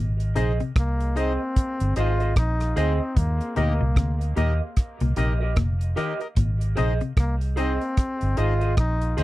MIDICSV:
0, 0, Header, 1, 8, 480
1, 0, Start_track
1, 0, Tempo, 800747
1, 1898, Time_signature, 4, 2, 24, 8
1, 5535, End_track
2, 0, Start_track
2, 0, Title_t, "Clean electric guitar"
2, 0, Program_c, 0, 27
2, 217, Note_on_c, 0, 68, 77
2, 221, Note_on_c, 0, 72, 81
2, 225, Note_on_c, 0, 75, 87
2, 343, Note_off_c, 0, 68, 0
2, 345, Note_off_c, 0, 72, 0
2, 347, Note_off_c, 0, 75, 0
2, 698, Note_on_c, 0, 68, 69
2, 704, Note_on_c, 0, 72, 86
2, 706, Note_on_c, 0, 75, 78
2, 824, Note_off_c, 0, 68, 0
2, 827, Note_off_c, 0, 72, 0
2, 828, Note_off_c, 0, 75, 0
2, 1178, Note_on_c, 0, 68, 77
2, 1183, Note_on_c, 0, 72, 84
2, 1188, Note_on_c, 0, 75, 79
2, 1304, Note_off_c, 0, 68, 0
2, 1306, Note_off_c, 0, 72, 0
2, 1309, Note_off_c, 0, 75, 0
2, 1320, Note_on_c, 0, 75, 64
2, 1324, Note_on_c, 0, 72, 58
2, 1328, Note_on_c, 0, 68, 46
2, 1386, Note_off_c, 0, 75, 0
2, 1388, Note_off_c, 0, 72, 0
2, 1390, Note_off_c, 0, 68, 0
2, 1656, Note_on_c, 0, 68, 94
2, 1660, Note_on_c, 0, 72, 84
2, 1664, Note_on_c, 0, 75, 101
2, 1783, Note_off_c, 0, 68, 0
2, 1785, Note_off_c, 0, 72, 0
2, 1787, Note_off_c, 0, 75, 0
2, 2138, Note_on_c, 0, 67, 70
2, 2142, Note_on_c, 0, 70, 79
2, 2143, Note_on_c, 0, 75, 92
2, 2264, Note_off_c, 0, 67, 0
2, 2266, Note_off_c, 0, 70, 0
2, 2267, Note_off_c, 0, 75, 0
2, 2614, Note_on_c, 0, 67, 77
2, 2620, Note_on_c, 0, 70, 79
2, 2624, Note_on_c, 0, 75, 88
2, 2742, Note_off_c, 0, 67, 0
2, 2745, Note_off_c, 0, 70, 0
2, 2747, Note_off_c, 0, 75, 0
2, 3096, Note_on_c, 0, 67, 72
2, 3101, Note_on_c, 0, 70, 75
2, 3105, Note_on_c, 0, 75, 85
2, 3223, Note_off_c, 0, 67, 0
2, 3225, Note_off_c, 0, 70, 0
2, 3228, Note_off_c, 0, 75, 0
2, 3240, Note_on_c, 0, 75, 68
2, 3246, Note_on_c, 0, 70, 64
2, 3249, Note_on_c, 0, 67, 57
2, 3307, Note_off_c, 0, 75, 0
2, 3309, Note_off_c, 0, 70, 0
2, 3311, Note_off_c, 0, 67, 0
2, 3573, Note_on_c, 0, 67, 91
2, 3578, Note_on_c, 0, 70, 92
2, 3581, Note_on_c, 0, 75, 93
2, 3702, Note_off_c, 0, 67, 0
2, 3704, Note_off_c, 0, 70, 0
2, 3706, Note_off_c, 0, 75, 0
2, 4050, Note_on_c, 0, 68, 82
2, 4055, Note_on_c, 0, 72, 93
2, 4058, Note_on_c, 0, 75, 85
2, 4180, Note_off_c, 0, 68, 0
2, 4183, Note_off_c, 0, 72, 0
2, 4184, Note_off_c, 0, 75, 0
2, 4532, Note_on_c, 0, 68, 77
2, 4537, Note_on_c, 0, 72, 78
2, 4540, Note_on_c, 0, 75, 89
2, 4661, Note_off_c, 0, 68, 0
2, 4664, Note_off_c, 0, 72, 0
2, 4665, Note_off_c, 0, 75, 0
2, 5018, Note_on_c, 0, 68, 71
2, 5022, Note_on_c, 0, 72, 76
2, 5025, Note_on_c, 0, 75, 84
2, 5144, Note_off_c, 0, 68, 0
2, 5146, Note_off_c, 0, 72, 0
2, 5148, Note_off_c, 0, 75, 0
2, 5160, Note_on_c, 0, 75, 65
2, 5164, Note_on_c, 0, 72, 56
2, 5168, Note_on_c, 0, 68, 54
2, 5227, Note_off_c, 0, 75, 0
2, 5228, Note_off_c, 0, 72, 0
2, 5231, Note_off_c, 0, 68, 0
2, 5497, Note_on_c, 0, 68, 86
2, 5501, Note_on_c, 0, 72, 88
2, 5505, Note_on_c, 0, 75, 102
2, 5535, Note_off_c, 0, 68, 0
2, 5535, Note_off_c, 0, 72, 0
2, 5535, Note_off_c, 0, 75, 0
2, 5535, End_track
3, 0, Start_track
3, 0, Title_t, "Synth stab"
3, 0, Program_c, 1, 62
3, 212, Note_on_c, 1, 63, 105
3, 214, Note_on_c, 1, 68, 91
3, 218, Note_on_c, 1, 72, 90
3, 219, Note_on_c, 1, 75, 112
3, 313, Note_off_c, 1, 63, 0
3, 314, Note_off_c, 1, 68, 0
3, 316, Note_off_c, 1, 72, 0
3, 316, Note_off_c, 1, 75, 0
3, 694, Note_on_c, 1, 63, 98
3, 696, Note_on_c, 1, 68, 85
3, 698, Note_on_c, 1, 72, 87
3, 700, Note_on_c, 1, 75, 103
3, 794, Note_off_c, 1, 63, 0
3, 795, Note_off_c, 1, 68, 0
3, 796, Note_off_c, 1, 72, 0
3, 797, Note_off_c, 1, 75, 0
3, 1175, Note_on_c, 1, 63, 80
3, 1177, Note_on_c, 1, 68, 75
3, 1181, Note_on_c, 1, 72, 77
3, 1182, Note_on_c, 1, 75, 95
3, 1275, Note_off_c, 1, 63, 0
3, 1276, Note_off_c, 1, 68, 0
3, 1277, Note_off_c, 1, 72, 0
3, 1278, Note_off_c, 1, 75, 0
3, 1656, Note_on_c, 1, 63, 90
3, 1658, Note_on_c, 1, 68, 81
3, 1661, Note_on_c, 1, 72, 82
3, 1663, Note_on_c, 1, 75, 104
3, 1755, Note_off_c, 1, 63, 0
3, 1756, Note_off_c, 1, 68, 0
3, 1757, Note_off_c, 1, 72, 0
3, 1758, Note_off_c, 1, 75, 0
3, 2135, Note_on_c, 1, 63, 102
3, 2137, Note_on_c, 1, 67, 96
3, 2140, Note_on_c, 1, 70, 92
3, 2143, Note_on_c, 1, 75, 109
3, 2234, Note_off_c, 1, 63, 0
3, 2236, Note_off_c, 1, 67, 0
3, 2237, Note_off_c, 1, 70, 0
3, 2238, Note_off_c, 1, 75, 0
3, 2617, Note_on_c, 1, 63, 87
3, 2620, Note_on_c, 1, 67, 84
3, 2621, Note_on_c, 1, 70, 84
3, 2624, Note_on_c, 1, 75, 99
3, 2715, Note_off_c, 1, 63, 0
3, 2717, Note_off_c, 1, 67, 0
3, 2718, Note_off_c, 1, 70, 0
3, 2719, Note_off_c, 1, 75, 0
3, 3098, Note_on_c, 1, 63, 83
3, 3100, Note_on_c, 1, 67, 82
3, 3102, Note_on_c, 1, 70, 80
3, 3105, Note_on_c, 1, 75, 92
3, 3196, Note_off_c, 1, 63, 0
3, 3197, Note_off_c, 1, 67, 0
3, 3198, Note_off_c, 1, 70, 0
3, 3200, Note_off_c, 1, 75, 0
3, 3576, Note_on_c, 1, 63, 88
3, 3578, Note_on_c, 1, 67, 82
3, 3580, Note_on_c, 1, 70, 84
3, 3582, Note_on_c, 1, 75, 100
3, 3675, Note_off_c, 1, 63, 0
3, 3676, Note_off_c, 1, 67, 0
3, 3677, Note_off_c, 1, 70, 0
3, 3678, Note_off_c, 1, 75, 0
3, 3725, Note_on_c, 1, 70, 46
3, 3725, Note_on_c, 1, 75, 50
3, 3762, Note_off_c, 1, 70, 0
3, 3762, Note_off_c, 1, 75, 0
3, 4058, Note_on_c, 1, 63, 97
3, 4060, Note_on_c, 1, 68, 95
3, 4062, Note_on_c, 1, 72, 92
3, 4065, Note_on_c, 1, 75, 114
3, 4156, Note_off_c, 1, 63, 0
3, 4157, Note_off_c, 1, 68, 0
3, 4158, Note_off_c, 1, 72, 0
3, 4160, Note_off_c, 1, 75, 0
3, 4537, Note_on_c, 1, 63, 96
3, 4539, Note_on_c, 1, 68, 82
3, 4542, Note_on_c, 1, 72, 86
3, 4544, Note_on_c, 1, 75, 102
3, 4636, Note_off_c, 1, 63, 0
3, 4637, Note_off_c, 1, 68, 0
3, 4638, Note_off_c, 1, 72, 0
3, 4639, Note_off_c, 1, 75, 0
3, 5017, Note_on_c, 1, 63, 86
3, 5019, Note_on_c, 1, 68, 84
3, 5022, Note_on_c, 1, 72, 76
3, 5024, Note_on_c, 1, 75, 90
3, 5116, Note_off_c, 1, 63, 0
3, 5117, Note_off_c, 1, 68, 0
3, 5118, Note_off_c, 1, 72, 0
3, 5119, Note_off_c, 1, 75, 0
3, 5499, Note_on_c, 1, 63, 92
3, 5500, Note_on_c, 1, 68, 81
3, 5502, Note_on_c, 1, 72, 83
3, 5505, Note_on_c, 1, 75, 101
3, 5535, Note_off_c, 1, 63, 0
3, 5535, Note_off_c, 1, 68, 0
3, 5535, Note_off_c, 1, 72, 0
3, 5535, Note_off_c, 1, 75, 0
3, 5535, End_track
4, 0, Start_track
4, 0, Title_t, "Trombone"
4, 0, Program_c, 2, 57
4, 469, Note_on_c, 2, 58, 88
4, 709, Note_on_c, 2, 60, 96
4, 718, Note_off_c, 2, 58, 0
4, 1183, Note_off_c, 2, 60, 0
4, 1186, Note_on_c, 2, 65, 98
4, 1405, Note_off_c, 2, 65, 0
4, 1428, Note_on_c, 2, 63, 98
4, 1666, Note_on_c, 2, 60, 90
4, 1675, Note_off_c, 2, 63, 0
4, 1905, Note_on_c, 2, 58, 95
4, 1914, Note_off_c, 2, 60, 0
4, 2141, Note_off_c, 2, 58, 0
4, 2147, Note_on_c, 2, 58, 83
4, 2599, Note_off_c, 2, 58, 0
4, 4310, Note_on_c, 2, 58, 89
4, 4406, Note_off_c, 2, 58, 0
4, 4547, Note_on_c, 2, 60, 96
4, 5025, Note_on_c, 2, 65, 106
4, 5034, Note_off_c, 2, 60, 0
4, 5262, Note_off_c, 2, 65, 0
4, 5265, Note_on_c, 2, 63, 102
4, 5505, Note_on_c, 2, 60, 87
4, 5514, Note_off_c, 2, 63, 0
4, 5535, Note_off_c, 2, 60, 0
4, 5535, End_track
5, 0, Start_track
5, 0, Title_t, "Clean electric guitar"
5, 0, Program_c, 3, 27
5, 0, Note_on_c, 3, 46, 78
5, 73, Note_off_c, 3, 46, 0
5, 216, Note_on_c, 3, 48, 81
5, 312, Note_off_c, 3, 48, 0
5, 362, Note_on_c, 3, 48, 70
5, 425, Note_off_c, 3, 48, 0
5, 1898, Note_on_c, 3, 43, 85
5, 1993, Note_off_c, 3, 43, 0
5, 2138, Note_on_c, 3, 46, 72
5, 2233, Note_off_c, 3, 46, 0
5, 2282, Note_on_c, 3, 46, 70
5, 2345, Note_off_c, 3, 46, 0
5, 2379, Note_on_c, 3, 48, 74
5, 2474, Note_off_c, 3, 48, 0
5, 2620, Note_on_c, 3, 46, 78
5, 2715, Note_off_c, 3, 46, 0
5, 3006, Note_on_c, 3, 46, 70
5, 3068, Note_off_c, 3, 46, 0
5, 3101, Note_on_c, 3, 48, 67
5, 3195, Note_off_c, 3, 48, 0
5, 3340, Note_on_c, 3, 46, 80
5, 3435, Note_off_c, 3, 46, 0
5, 3580, Note_on_c, 3, 51, 77
5, 3675, Note_off_c, 3, 51, 0
5, 3820, Note_on_c, 3, 46, 72
5, 3914, Note_off_c, 3, 46, 0
5, 4059, Note_on_c, 3, 48, 81
5, 4154, Note_off_c, 3, 48, 0
5, 4203, Note_on_c, 3, 48, 70
5, 4266, Note_off_c, 3, 48, 0
5, 5535, End_track
6, 0, Start_track
6, 0, Title_t, "Fingered electric bass"
6, 0, Program_c, 4, 33
6, 0, Note_on_c, 4, 32, 102
6, 200, Note_off_c, 4, 32, 0
6, 222, Note_on_c, 4, 34, 82
6, 353, Note_off_c, 4, 34, 0
6, 456, Note_on_c, 4, 36, 84
6, 817, Note_off_c, 4, 36, 0
6, 1086, Note_on_c, 4, 31, 78
6, 1172, Note_off_c, 4, 31, 0
6, 1181, Note_on_c, 4, 32, 81
6, 1401, Note_off_c, 4, 32, 0
6, 1418, Note_on_c, 4, 34, 79
6, 1639, Note_off_c, 4, 34, 0
6, 1658, Note_on_c, 4, 38, 77
6, 1791, Note_off_c, 4, 38, 0
6, 1899, Note_on_c, 4, 39, 101
6, 2031, Note_off_c, 4, 39, 0
6, 2140, Note_on_c, 4, 38, 89
6, 2272, Note_off_c, 4, 38, 0
6, 2285, Note_on_c, 4, 36, 85
6, 2372, Note_off_c, 4, 36, 0
6, 2378, Note_on_c, 4, 38, 92
6, 2599, Note_off_c, 4, 38, 0
6, 2620, Note_on_c, 4, 39, 82
6, 2752, Note_off_c, 4, 39, 0
6, 3004, Note_on_c, 4, 36, 77
6, 3092, Note_off_c, 4, 36, 0
6, 3099, Note_on_c, 4, 34, 77
6, 3320, Note_off_c, 4, 34, 0
6, 3339, Note_on_c, 4, 29, 83
6, 3560, Note_off_c, 4, 29, 0
6, 3818, Note_on_c, 4, 32, 108
6, 4040, Note_off_c, 4, 32, 0
6, 4063, Note_on_c, 4, 34, 81
6, 4194, Note_off_c, 4, 34, 0
6, 4299, Note_on_c, 4, 36, 84
6, 4659, Note_off_c, 4, 36, 0
6, 4931, Note_on_c, 4, 31, 75
6, 5015, Note_off_c, 4, 31, 0
6, 5025, Note_on_c, 4, 32, 88
6, 5243, Note_off_c, 4, 32, 0
6, 5261, Note_on_c, 4, 34, 86
6, 5481, Note_off_c, 4, 34, 0
6, 5505, Note_on_c, 4, 38, 82
6, 5535, Note_off_c, 4, 38, 0
6, 5535, End_track
7, 0, Start_track
7, 0, Title_t, "Muted clean electric guitar strokes"
7, 3717, Note_on_c, 9, 29, 42
7, 3777, Note_off_c, 9, 29, 0
7, 5535, End_track
8, 0, Start_track
8, 0, Title_t, "Drums"
8, 120, Note_on_c, 9, 42, 50
8, 179, Note_off_c, 9, 42, 0
8, 214, Note_on_c, 9, 42, 68
8, 274, Note_off_c, 9, 42, 0
8, 360, Note_on_c, 9, 42, 31
8, 420, Note_off_c, 9, 42, 0
8, 454, Note_on_c, 9, 36, 114
8, 455, Note_on_c, 9, 42, 83
8, 457, Note_on_c, 9, 37, 107
8, 514, Note_off_c, 9, 36, 0
8, 515, Note_off_c, 9, 42, 0
8, 517, Note_off_c, 9, 37, 0
8, 602, Note_on_c, 9, 42, 47
8, 662, Note_off_c, 9, 42, 0
8, 699, Note_on_c, 9, 42, 64
8, 759, Note_off_c, 9, 42, 0
8, 937, Note_on_c, 9, 42, 90
8, 938, Note_on_c, 9, 36, 103
8, 997, Note_off_c, 9, 42, 0
8, 998, Note_off_c, 9, 36, 0
8, 1081, Note_on_c, 9, 42, 53
8, 1140, Note_off_c, 9, 42, 0
8, 1175, Note_on_c, 9, 42, 80
8, 1235, Note_off_c, 9, 42, 0
8, 1320, Note_on_c, 9, 42, 34
8, 1380, Note_off_c, 9, 42, 0
8, 1415, Note_on_c, 9, 42, 74
8, 1416, Note_on_c, 9, 36, 96
8, 1420, Note_on_c, 9, 37, 109
8, 1475, Note_off_c, 9, 42, 0
8, 1476, Note_off_c, 9, 36, 0
8, 1480, Note_off_c, 9, 37, 0
8, 1561, Note_on_c, 9, 42, 51
8, 1565, Note_on_c, 9, 37, 68
8, 1621, Note_off_c, 9, 42, 0
8, 1625, Note_off_c, 9, 37, 0
8, 1659, Note_on_c, 9, 42, 76
8, 1719, Note_off_c, 9, 42, 0
8, 1897, Note_on_c, 9, 36, 98
8, 1898, Note_on_c, 9, 42, 91
8, 1957, Note_off_c, 9, 36, 0
8, 1958, Note_off_c, 9, 42, 0
8, 2042, Note_on_c, 9, 42, 49
8, 2102, Note_off_c, 9, 42, 0
8, 2135, Note_on_c, 9, 42, 71
8, 2195, Note_off_c, 9, 42, 0
8, 2375, Note_on_c, 9, 36, 108
8, 2378, Note_on_c, 9, 42, 83
8, 2379, Note_on_c, 9, 37, 106
8, 2435, Note_off_c, 9, 36, 0
8, 2438, Note_off_c, 9, 42, 0
8, 2439, Note_off_c, 9, 37, 0
8, 2525, Note_on_c, 9, 42, 46
8, 2585, Note_off_c, 9, 42, 0
8, 2617, Note_on_c, 9, 42, 61
8, 2677, Note_off_c, 9, 42, 0
8, 2857, Note_on_c, 9, 42, 88
8, 2858, Note_on_c, 9, 37, 61
8, 2859, Note_on_c, 9, 36, 93
8, 2917, Note_off_c, 9, 42, 0
8, 2918, Note_off_c, 9, 37, 0
8, 2919, Note_off_c, 9, 36, 0
8, 3000, Note_on_c, 9, 42, 55
8, 3060, Note_off_c, 9, 42, 0
8, 3095, Note_on_c, 9, 42, 84
8, 3155, Note_off_c, 9, 42, 0
8, 3334, Note_on_c, 9, 42, 72
8, 3337, Note_on_c, 9, 36, 105
8, 3339, Note_on_c, 9, 37, 105
8, 3394, Note_off_c, 9, 42, 0
8, 3397, Note_off_c, 9, 36, 0
8, 3399, Note_off_c, 9, 37, 0
8, 3482, Note_on_c, 9, 42, 50
8, 3542, Note_off_c, 9, 42, 0
8, 3578, Note_on_c, 9, 42, 72
8, 3638, Note_off_c, 9, 42, 0
8, 3720, Note_on_c, 9, 42, 32
8, 3780, Note_off_c, 9, 42, 0
8, 3815, Note_on_c, 9, 42, 92
8, 3817, Note_on_c, 9, 36, 100
8, 3875, Note_off_c, 9, 42, 0
8, 3877, Note_off_c, 9, 36, 0
8, 3963, Note_on_c, 9, 42, 50
8, 4023, Note_off_c, 9, 42, 0
8, 4057, Note_on_c, 9, 42, 70
8, 4117, Note_off_c, 9, 42, 0
8, 4201, Note_on_c, 9, 42, 35
8, 4260, Note_off_c, 9, 42, 0
8, 4297, Note_on_c, 9, 36, 106
8, 4299, Note_on_c, 9, 42, 79
8, 4300, Note_on_c, 9, 37, 106
8, 4357, Note_off_c, 9, 36, 0
8, 4359, Note_off_c, 9, 42, 0
8, 4360, Note_off_c, 9, 37, 0
8, 4444, Note_on_c, 9, 42, 46
8, 4504, Note_off_c, 9, 42, 0
8, 4538, Note_on_c, 9, 42, 64
8, 4598, Note_off_c, 9, 42, 0
8, 4683, Note_on_c, 9, 42, 33
8, 4743, Note_off_c, 9, 42, 0
8, 4779, Note_on_c, 9, 42, 90
8, 4781, Note_on_c, 9, 36, 100
8, 4781, Note_on_c, 9, 37, 66
8, 4839, Note_off_c, 9, 42, 0
8, 4841, Note_off_c, 9, 36, 0
8, 4841, Note_off_c, 9, 37, 0
8, 4922, Note_on_c, 9, 42, 51
8, 4982, Note_off_c, 9, 42, 0
8, 5017, Note_on_c, 9, 42, 79
8, 5077, Note_off_c, 9, 42, 0
8, 5162, Note_on_c, 9, 42, 33
8, 5222, Note_off_c, 9, 42, 0
8, 5257, Note_on_c, 9, 42, 73
8, 5259, Note_on_c, 9, 36, 104
8, 5262, Note_on_c, 9, 37, 109
8, 5317, Note_off_c, 9, 42, 0
8, 5319, Note_off_c, 9, 36, 0
8, 5322, Note_off_c, 9, 37, 0
8, 5404, Note_on_c, 9, 42, 55
8, 5464, Note_off_c, 9, 42, 0
8, 5501, Note_on_c, 9, 42, 74
8, 5535, Note_off_c, 9, 42, 0
8, 5535, End_track
0, 0, End_of_file